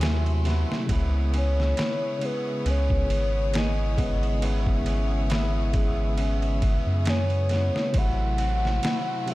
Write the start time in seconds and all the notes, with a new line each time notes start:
Already playing: D#2 A3 E4 F#4 A4 E5 C6
0.00 C3 F#3 A3 E4 G#4, snare, ride
0.26 ride
0.44 C3 F#3 A3 B3 E4, snare, ride
0.72 snare
0.86 C#2 C#3 G#3 B3 G#4 C#5, kick, ride
0.92 E4
1.34 C#4 C#5, ride
1.60 snare
1.77 E4, snare, ride
2.19 C#3 G#3, ride
2.23 B3 G#4 B4
2.66 C#2 C#4 C#5, ride
2.90 kick
3.09 G#1, ride
3.54 G#4 D#5, snare, ride
3.97 C#3 G#3 B3 E4, kick, ride
4.23 ride
4.39 C#3 G#3 B3, ride
4.44 E4 E5
4.66 kick
4.86 C#4, ride
5.30 E4, snare, ride
5.72 C#3 G#3 B3, kick, ride
5.78 G#4
6.18 C#4, ride
6.42 ride
6.62 kick, ride
6.87 F#2
7.05 G#4 C#5, snare, ride
7.30 ride
7.49 C#3 G#3 B3 E4, snare, ride
7.76 snare
7.92 A1 C3 F#3 A3 C4 E4 F#4, kick, ride
7.98 E4 F#5
8.38 C4, ride
8.65 snare
8.83 E4, snare, ride
9.25 C3 F#3 A3, ride
9.30 E5